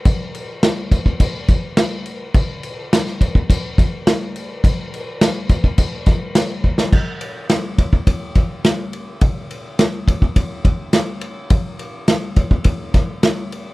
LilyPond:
\new DrumStaff \with { instrumentName = "Drums" } \drummode { \time 4/4 \tempo 4 = 105 <cymc bd>8 cymc8 <cymc sn>8 <cymc bd>16 bd16 <cymc bd>8 <cymc bd>8 <cymc sn>8 cymc8 | <cymc bd>8 cymc8 <cymc sn>16 sn16 <cymc bd>16 bd16 <cymc bd>8 <cymc bd>8 <cymc sn>8 cymc8 | <cymc bd>8 cymc8 <cymc sn>8 <cymc bd>16 bd16 <cymc bd>8 <cymc bd sn>8 <cymc sn>8 bd16 sn16 | <cymc bd>8 cymr8 <cymr sn>8 <bd cymr>16 bd16 <bd cymr>8 <bd cymr>8 <cymr sn>8 cymr8 |
<bd cymr>8 cymr8 <cymr sn>8 <bd cymr>16 bd16 <bd cymr>8 <bd cymr>8 <cymr sn>8 cymr8 | <bd cymr>8 cymr8 <cymr sn>8 <bd cymr>16 bd16 <bd cymr>8 <bd cymr sn>8 <cymr sn>8 cymr8 | }